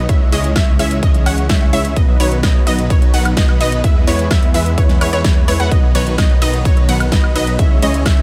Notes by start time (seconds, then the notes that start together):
0.09 C#2 E3 G#3 C#4 E4 C#5 E5, kick, closed hi-hat
0.32 C#2 G#3 C#4 E4 C#5 D#5, open hi-hat
0.44 closed hi-hat
0.56 C#2 G#3 C#4 E4 C#5 E5, kick, snare, closed hi-hat, high woodblock
0.79 C#2 G#3 C#4 E4 C#5 E5, open hi-hat
0.91 closed hi-hat
1.03 C#2 G#3 C#4 E4 C#5 D#5, kick, closed hi-hat
1.14 closed hi-hat
1.26 C#2 G#3 C#4 E4 C#5 F#5, open hi-hat, high woodblock
1.38 closed hi-hat
1.49 C#2 G#3 C#4 E4 C#5 E5, kick, snare, closed hi-hat
1.73 C#2 G#3 C#4 E4 C#5 E5, open hi-hat
1.85 closed hi-hat
1.96 B1 D#3 F#3 B3 D#4 B4 D#5, kick, closed hi-hat
2.20 B1 F#3 B3 D#4 B4 C#5, open hi-hat
2.32 closed hi-hat
2.43 B1 F#3 B3 D#4 B4 D#5, kick, snare, closed hi-hat, high woodblock
2.67 B1 F#3 B3 D#4 B4 D#5, open hi-hat
2.79 closed hi-hat
2.90 B1 F#3 B3 D#4 B4 C#5, kick, closed hi-hat
3.02 closed hi-hat
3.14 B1 F#3 B3 D#4 B4 F#5, open hi-hat
3.25 closed hi-hat, high woodblock
3.37 B1 F#3 B3 D#4 B4 D#5, kick, snare, closed hi-hat
3.49 high woodblock
3.61 B1 F#3 B3 D#4 B4 D#5, open hi-hat
3.72 closed hi-hat
3.84 E2 E3 G#3 B3 E4 B4 E5, kick, closed hi-hat
4.07 E2 G#3 B3 E4 B4 C#5, open hi-hat
4.19 closed hi-hat
4.31 E2 G#3 B3 E4 E5, kick, snare, closed hi-hat, high woodblock
4.43 closed hi-hat
4.54 E2 G#3 B3 E4 B4 E5, open hi-hat
4.66 closed hi-hat
4.78 E2 G#3 B3 E4 B4 C#5, kick, closed hi-hat
4.89 snare, closed hi-hat
5.01 E2 G#3 B3 E4 B4 C#5, open hi-hat, high woodblock
5.13 E2 G#3 B3 E4 B4 C#5, closed hi-hat
5.24 E2 G#3 B3 E4 B4 C#5, kick, snare, closed hi-hat
5.48 E2 G#3 B3 E4 B4 C#5, open hi-hat
5.60 E2 G#3 B3 E4 B4 F#5, closed hi-hat
5.71 B1 D#3 F#3 B3 D#4 D#5, kick, closed hi-hat
5.95 B1 F#3 B3 D#4 B4 C#5, open hi-hat, ride
6.07 closed hi-hat
6.18 B1 F#3 B3 D#4 D#5, kick, snare, closed hi-hat, high woodblock
6.42 B1 F#3 B3 D#4 B4 D#5, open hi-hat, ride
6.54 closed hi-hat
6.65 B1 F#3 B3 D#4 B4 C#5, kick, closed hi-hat
6.77 closed hi-hat
6.89 B1 F#3 B3 D#4 B4 F#5, open hi-hat, ride
7.00 closed hi-hat, high woodblock
7.12 B1 F#3 B3 D#4 B4 D#5, kick, snare, closed hi-hat
7.24 high woodblock
7.36 B1 F#3 B3 D#4 B4 D#5, open hi-hat, ride
7.47 closed hi-hat
7.59 C#2 E3 G#3 C#4 E4 C#5 E5, kick, closed hi-hat
7.82 C#2 G#3 C#4 E4 C#5 D#5, open hi-hat, ride
7.94 closed hi-hat
8.06 C#2 G#3 C#4 E4 C#5 E5, kick, snare, closed hi-hat, high woodblock